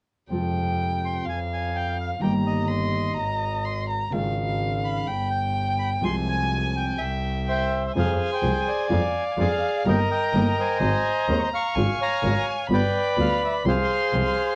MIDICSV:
0, 0, Header, 1, 5, 480
1, 0, Start_track
1, 0, Key_signature, -4, "minor"
1, 0, Tempo, 476569
1, 318, Time_signature, 4, 2, 24, 8
1, 14658, End_track
2, 0, Start_track
2, 0, Title_t, "Violin"
2, 0, Program_c, 0, 40
2, 314, Note_on_c, 0, 79, 60
2, 1262, Note_on_c, 0, 77, 58
2, 1278, Note_off_c, 0, 79, 0
2, 2229, Note_on_c, 0, 82, 61
2, 2244, Note_off_c, 0, 77, 0
2, 2703, Note_on_c, 0, 84, 69
2, 2718, Note_off_c, 0, 82, 0
2, 3178, Note_off_c, 0, 84, 0
2, 3184, Note_on_c, 0, 82, 71
2, 3674, Note_on_c, 0, 84, 69
2, 3690, Note_off_c, 0, 82, 0
2, 3906, Note_off_c, 0, 84, 0
2, 3912, Note_on_c, 0, 82, 65
2, 4146, Note_on_c, 0, 77, 70
2, 4161, Note_off_c, 0, 82, 0
2, 5109, Note_on_c, 0, 79, 72
2, 5124, Note_off_c, 0, 77, 0
2, 6077, Note_on_c, 0, 80, 75
2, 6092, Note_off_c, 0, 79, 0
2, 7033, Note_on_c, 0, 76, 57
2, 7048, Note_off_c, 0, 80, 0
2, 7763, Note_off_c, 0, 76, 0
2, 7995, Note_on_c, 0, 80, 69
2, 8923, Note_off_c, 0, 80, 0
2, 8967, Note_on_c, 0, 77, 64
2, 9924, Note_on_c, 0, 82, 79
2, 9939, Note_off_c, 0, 77, 0
2, 10868, Note_off_c, 0, 82, 0
2, 10874, Note_on_c, 0, 82, 76
2, 11828, Note_on_c, 0, 80, 82
2, 11843, Note_off_c, 0, 82, 0
2, 12775, Note_off_c, 0, 80, 0
2, 12781, Note_on_c, 0, 83, 84
2, 13748, Note_on_c, 0, 84, 81
2, 13763, Note_off_c, 0, 83, 0
2, 14658, Note_off_c, 0, 84, 0
2, 14658, End_track
3, 0, Start_track
3, 0, Title_t, "Bandoneon"
3, 0, Program_c, 1, 23
3, 1060, Note_on_c, 1, 84, 58
3, 1274, Note_off_c, 1, 84, 0
3, 1303, Note_on_c, 1, 80, 57
3, 1406, Note_off_c, 1, 80, 0
3, 1544, Note_on_c, 1, 80, 56
3, 1769, Note_on_c, 1, 79, 60
3, 1779, Note_off_c, 1, 80, 0
3, 1988, Note_off_c, 1, 79, 0
3, 2019, Note_on_c, 1, 77, 53
3, 2122, Note_off_c, 1, 77, 0
3, 2247, Note_on_c, 1, 79, 59
3, 2353, Note_off_c, 1, 79, 0
3, 2485, Note_on_c, 1, 75, 56
3, 3878, Note_off_c, 1, 75, 0
3, 4879, Note_on_c, 1, 83, 67
3, 5323, Note_off_c, 1, 83, 0
3, 5346, Note_on_c, 1, 79, 59
3, 5573, Note_off_c, 1, 79, 0
3, 5593, Note_on_c, 1, 79, 63
3, 5816, Note_off_c, 1, 79, 0
3, 5833, Note_on_c, 1, 83, 67
3, 5941, Note_off_c, 1, 83, 0
3, 6093, Note_on_c, 1, 84, 83
3, 6197, Note_off_c, 1, 84, 0
3, 6330, Note_on_c, 1, 80, 75
3, 6816, Note_on_c, 1, 79, 59
3, 6818, Note_off_c, 1, 80, 0
3, 7537, Note_on_c, 1, 76, 51
3, 7539, Note_on_c, 1, 72, 55
3, 7553, Note_off_c, 1, 79, 0
3, 7568, Note_on_c, 1, 79, 71
3, 7885, Note_off_c, 1, 79, 0
3, 7916, Note_off_c, 1, 76, 0
3, 7931, Note_on_c, 1, 76, 56
3, 7975, Note_off_c, 1, 76, 0
3, 7982, Note_off_c, 1, 72, 0
3, 8022, Note_on_c, 1, 68, 51
3, 8023, Note_on_c, 1, 72, 49
3, 8048, Note_on_c, 1, 77, 65
3, 8365, Note_off_c, 1, 77, 0
3, 8366, Note_off_c, 1, 72, 0
3, 8381, Note_on_c, 1, 72, 53
3, 8399, Note_on_c, 1, 79, 61
3, 8743, Note_on_c, 1, 74, 51
3, 8755, Note_off_c, 1, 79, 0
3, 8767, Note_on_c, 1, 80, 71
3, 8936, Note_off_c, 1, 72, 0
3, 8937, Note_off_c, 1, 68, 0
3, 9307, Note_off_c, 1, 80, 0
3, 9380, Note_on_c, 1, 80, 70
3, 9422, Note_off_c, 1, 80, 0
3, 9447, Note_off_c, 1, 74, 0
3, 9462, Note_on_c, 1, 74, 53
3, 9467, Note_on_c, 1, 68, 52
3, 9483, Note_on_c, 1, 77, 76
3, 9901, Note_off_c, 1, 74, 0
3, 9904, Note_off_c, 1, 68, 0
3, 9949, Note_on_c, 1, 70, 57
3, 9951, Note_on_c, 1, 75, 52
3, 9959, Note_off_c, 1, 77, 0
3, 9967, Note_on_c, 1, 79, 75
3, 10066, Note_off_c, 1, 79, 0
3, 10169, Note_off_c, 1, 75, 0
3, 10184, Note_on_c, 1, 75, 57
3, 10186, Note_on_c, 1, 79, 60
3, 10204, Note_on_c, 1, 82, 71
3, 10631, Note_off_c, 1, 82, 0
3, 10655, Note_off_c, 1, 75, 0
3, 10670, Note_on_c, 1, 75, 55
3, 10677, Note_on_c, 1, 72, 58
3, 10686, Note_on_c, 1, 80, 73
3, 10853, Note_off_c, 1, 79, 0
3, 10855, Note_off_c, 1, 70, 0
3, 11343, Note_off_c, 1, 80, 0
3, 11410, Note_on_c, 1, 82, 83
3, 11440, Note_off_c, 1, 82, 0
3, 11470, Note_on_c, 1, 85, 56
3, 11492, Note_off_c, 1, 85, 0
3, 11516, Note_on_c, 1, 84, 71
3, 11562, Note_off_c, 1, 84, 0
3, 11574, Note_off_c, 1, 75, 0
3, 11578, Note_off_c, 1, 72, 0
3, 11620, Note_on_c, 1, 77, 62
3, 11632, Note_on_c, 1, 85, 80
3, 12088, Note_off_c, 1, 77, 0
3, 12098, Note_on_c, 1, 73, 55
3, 12103, Note_on_c, 1, 77, 54
3, 12108, Note_off_c, 1, 85, 0
3, 12110, Note_on_c, 1, 82, 85
3, 12540, Note_off_c, 1, 82, 0
3, 12583, Note_on_c, 1, 80, 68
3, 12685, Note_off_c, 1, 80, 0
3, 12764, Note_off_c, 1, 73, 0
3, 12767, Note_off_c, 1, 77, 0
3, 12822, Note_on_c, 1, 71, 54
3, 12824, Note_on_c, 1, 74, 55
3, 12831, Note_on_c, 1, 79, 77
3, 13261, Note_off_c, 1, 79, 0
3, 13306, Note_on_c, 1, 77, 73
3, 13515, Note_off_c, 1, 77, 0
3, 13546, Note_on_c, 1, 76, 59
3, 13647, Note_off_c, 1, 76, 0
3, 13729, Note_off_c, 1, 71, 0
3, 13730, Note_off_c, 1, 74, 0
3, 13778, Note_on_c, 1, 72, 54
3, 13779, Note_on_c, 1, 68, 60
3, 13782, Note_on_c, 1, 77, 83
3, 14658, Note_off_c, 1, 68, 0
3, 14658, Note_off_c, 1, 72, 0
3, 14658, Note_off_c, 1, 77, 0
3, 14658, End_track
4, 0, Start_track
4, 0, Title_t, "Nylon-string guitar"
4, 0, Program_c, 2, 24
4, 301, Note_on_c, 2, 48, 46
4, 314, Note_on_c, 2, 53, 50
4, 322, Note_on_c, 2, 56, 51
4, 330, Note_on_c, 2, 60, 55
4, 337, Note_on_c, 2, 65, 53
4, 1262, Note_off_c, 2, 48, 0
4, 1268, Note_off_c, 2, 53, 0
4, 1272, Note_off_c, 2, 56, 0
4, 1276, Note_off_c, 2, 60, 0
4, 1280, Note_off_c, 2, 65, 0
4, 2213, Note_on_c, 2, 51, 54
4, 2229, Note_on_c, 2, 55, 56
4, 2238, Note_on_c, 2, 58, 55
4, 2250, Note_on_c, 2, 63, 61
4, 2251, Note_on_c, 2, 67, 54
4, 3174, Note_off_c, 2, 51, 0
4, 3182, Note_off_c, 2, 55, 0
4, 3187, Note_off_c, 2, 58, 0
4, 3193, Note_off_c, 2, 63, 0
4, 3193, Note_off_c, 2, 67, 0
4, 4131, Note_on_c, 2, 49, 56
4, 4148, Note_on_c, 2, 51, 63
4, 4154, Note_on_c, 2, 56, 61
4, 4169, Note_on_c, 2, 63, 64
4, 4173, Note_on_c, 2, 65, 60
4, 5093, Note_off_c, 2, 49, 0
4, 5101, Note_off_c, 2, 51, 0
4, 5104, Note_off_c, 2, 56, 0
4, 5111, Note_off_c, 2, 63, 0
4, 5113, Note_off_c, 2, 65, 0
4, 6053, Note_on_c, 2, 48, 61
4, 6062, Note_on_c, 2, 53, 57
4, 6071, Note_on_c, 2, 56, 60
4, 6079, Note_on_c, 2, 60, 64
4, 6081, Note_on_c, 2, 65, 67
4, 7018, Note_off_c, 2, 48, 0
4, 7022, Note_off_c, 2, 53, 0
4, 7026, Note_off_c, 2, 56, 0
4, 7030, Note_off_c, 2, 60, 0
4, 7032, Note_off_c, 2, 65, 0
4, 8009, Note_on_c, 2, 48, 58
4, 8015, Note_on_c, 2, 53, 63
4, 8018, Note_on_c, 2, 56, 64
4, 8019, Note_on_c, 2, 60, 60
4, 8022, Note_on_c, 2, 65, 64
4, 8100, Note_off_c, 2, 48, 0
4, 8102, Note_off_c, 2, 53, 0
4, 8104, Note_off_c, 2, 56, 0
4, 8105, Note_off_c, 2, 60, 0
4, 8106, Note_off_c, 2, 65, 0
4, 8477, Note_on_c, 2, 53, 56
4, 8478, Note_on_c, 2, 48, 61
4, 8487, Note_on_c, 2, 56, 64
4, 8490, Note_on_c, 2, 60, 65
4, 8491, Note_on_c, 2, 65, 63
4, 8574, Note_off_c, 2, 53, 0
4, 8575, Note_off_c, 2, 48, 0
4, 8579, Note_off_c, 2, 56, 0
4, 8581, Note_off_c, 2, 60, 0
4, 8581, Note_off_c, 2, 65, 0
4, 8956, Note_on_c, 2, 53, 62
4, 8960, Note_on_c, 2, 56, 67
4, 8964, Note_on_c, 2, 62, 72
4, 8968, Note_on_c, 2, 65, 70
4, 9054, Note_off_c, 2, 53, 0
4, 9055, Note_off_c, 2, 56, 0
4, 9058, Note_off_c, 2, 62, 0
4, 9059, Note_off_c, 2, 65, 0
4, 9437, Note_on_c, 2, 53, 68
4, 9443, Note_on_c, 2, 56, 64
4, 9448, Note_on_c, 2, 65, 72
4, 9449, Note_on_c, 2, 62, 68
4, 9533, Note_off_c, 2, 53, 0
4, 9536, Note_off_c, 2, 56, 0
4, 9539, Note_off_c, 2, 62, 0
4, 9539, Note_off_c, 2, 65, 0
4, 9923, Note_on_c, 2, 55, 65
4, 9924, Note_on_c, 2, 58, 64
4, 9925, Note_on_c, 2, 51, 62
4, 9930, Note_on_c, 2, 67, 75
4, 9932, Note_on_c, 2, 63, 71
4, 10016, Note_off_c, 2, 55, 0
4, 10017, Note_off_c, 2, 51, 0
4, 10017, Note_off_c, 2, 58, 0
4, 10020, Note_off_c, 2, 67, 0
4, 10021, Note_off_c, 2, 63, 0
4, 10407, Note_on_c, 2, 51, 66
4, 10413, Note_on_c, 2, 55, 71
4, 10416, Note_on_c, 2, 58, 71
4, 10420, Note_on_c, 2, 63, 62
4, 10423, Note_on_c, 2, 67, 69
4, 10497, Note_off_c, 2, 51, 0
4, 10500, Note_off_c, 2, 55, 0
4, 10501, Note_off_c, 2, 58, 0
4, 10503, Note_off_c, 2, 63, 0
4, 10505, Note_off_c, 2, 67, 0
4, 10875, Note_on_c, 2, 51, 70
4, 10877, Note_on_c, 2, 56, 73
4, 10882, Note_on_c, 2, 60, 76
4, 10888, Note_on_c, 2, 68, 73
4, 10970, Note_off_c, 2, 51, 0
4, 10971, Note_off_c, 2, 56, 0
4, 10974, Note_off_c, 2, 60, 0
4, 10977, Note_off_c, 2, 68, 0
4, 11366, Note_on_c, 2, 51, 65
4, 11367, Note_on_c, 2, 56, 69
4, 11374, Note_on_c, 2, 60, 74
4, 11376, Note_on_c, 2, 68, 76
4, 11455, Note_off_c, 2, 51, 0
4, 11455, Note_off_c, 2, 56, 0
4, 11459, Note_off_c, 2, 60, 0
4, 11460, Note_off_c, 2, 68, 0
4, 11841, Note_on_c, 2, 49, 68
4, 11842, Note_on_c, 2, 51, 68
4, 11848, Note_on_c, 2, 63, 75
4, 11850, Note_on_c, 2, 65, 70
4, 11851, Note_on_c, 2, 56, 72
4, 11931, Note_off_c, 2, 49, 0
4, 11931, Note_off_c, 2, 51, 0
4, 11934, Note_off_c, 2, 63, 0
4, 11936, Note_off_c, 2, 56, 0
4, 11936, Note_off_c, 2, 65, 0
4, 12310, Note_on_c, 2, 49, 59
4, 12314, Note_on_c, 2, 51, 68
4, 12322, Note_on_c, 2, 63, 65
4, 12323, Note_on_c, 2, 56, 67
4, 12323, Note_on_c, 2, 65, 75
4, 12404, Note_off_c, 2, 49, 0
4, 12406, Note_off_c, 2, 51, 0
4, 12410, Note_off_c, 2, 56, 0
4, 12410, Note_off_c, 2, 63, 0
4, 12411, Note_off_c, 2, 65, 0
4, 12783, Note_on_c, 2, 55, 62
4, 12795, Note_on_c, 2, 59, 72
4, 12796, Note_on_c, 2, 65, 74
4, 12880, Note_off_c, 2, 55, 0
4, 12885, Note_off_c, 2, 59, 0
4, 12886, Note_off_c, 2, 65, 0
4, 13262, Note_on_c, 2, 55, 61
4, 13265, Note_on_c, 2, 59, 71
4, 13275, Note_on_c, 2, 65, 75
4, 13360, Note_off_c, 2, 55, 0
4, 13361, Note_off_c, 2, 59, 0
4, 13366, Note_off_c, 2, 65, 0
4, 13747, Note_on_c, 2, 53, 65
4, 13751, Note_on_c, 2, 48, 62
4, 13756, Note_on_c, 2, 56, 69
4, 13762, Note_on_c, 2, 60, 69
4, 13762, Note_on_c, 2, 65, 70
4, 13842, Note_off_c, 2, 53, 0
4, 13844, Note_off_c, 2, 48, 0
4, 13846, Note_off_c, 2, 56, 0
4, 13849, Note_off_c, 2, 60, 0
4, 13849, Note_off_c, 2, 65, 0
4, 14230, Note_on_c, 2, 48, 58
4, 14231, Note_on_c, 2, 53, 60
4, 14234, Note_on_c, 2, 56, 64
4, 14242, Note_on_c, 2, 60, 62
4, 14244, Note_on_c, 2, 65, 64
4, 14323, Note_off_c, 2, 48, 0
4, 14324, Note_off_c, 2, 53, 0
4, 14326, Note_off_c, 2, 56, 0
4, 14329, Note_off_c, 2, 60, 0
4, 14331, Note_off_c, 2, 65, 0
4, 14658, End_track
5, 0, Start_track
5, 0, Title_t, "Double bass"
5, 0, Program_c, 3, 43
5, 310, Note_on_c, 3, 41, 49
5, 1228, Note_off_c, 3, 41, 0
5, 1273, Note_on_c, 3, 41, 44
5, 2188, Note_off_c, 3, 41, 0
5, 2230, Note_on_c, 3, 31, 51
5, 3144, Note_off_c, 3, 31, 0
5, 3194, Note_on_c, 3, 32, 51
5, 4105, Note_off_c, 3, 32, 0
5, 4153, Note_on_c, 3, 32, 55
5, 5065, Note_off_c, 3, 32, 0
5, 5113, Note_on_c, 3, 31, 56
5, 6026, Note_off_c, 3, 31, 0
5, 6078, Note_on_c, 3, 36, 54
5, 6991, Note_off_c, 3, 36, 0
5, 7036, Note_on_c, 3, 36, 55
5, 7958, Note_off_c, 3, 36, 0
5, 8007, Note_on_c, 3, 41, 67
5, 8209, Note_off_c, 3, 41, 0
5, 8482, Note_on_c, 3, 36, 64
5, 8687, Note_off_c, 3, 36, 0
5, 8969, Note_on_c, 3, 41, 68
5, 9171, Note_off_c, 3, 41, 0
5, 9440, Note_on_c, 3, 41, 67
5, 9645, Note_off_c, 3, 41, 0
5, 9925, Note_on_c, 3, 31, 73
5, 10128, Note_off_c, 3, 31, 0
5, 10408, Note_on_c, 3, 31, 70
5, 10608, Note_off_c, 3, 31, 0
5, 10884, Note_on_c, 3, 32, 72
5, 11085, Note_off_c, 3, 32, 0
5, 11363, Note_on_c, 3, 39, 71
5, 11564, Note_off_c, 3, 39, 0
5, 11840, Note_on_c, 3, 32, 68
5, 12040, Note_off_c, 3, 32, 0
5, 12315, Note_on_c, 3, 32, 73
5, 12517, Note_off_c, 3, 32, 0
5, 12787, Note_on_c, 3, 31, 71
5, 12992, Note_off_c, 3, 31, 0
5, 13270, Note_on_c, 3, 38, 67
5, 13475, Note_off_c, 3, 38, 0
5, 13750, Note_on_c, 3, 36, 75
5, 13954, Note_off_c, 3, 36, 0
5, 14230, Note_on_c, 3, 36, 65
5, 14435, Note_off_c, 3, 36, 0
5, 14658, End_track
0, 0, End_of_file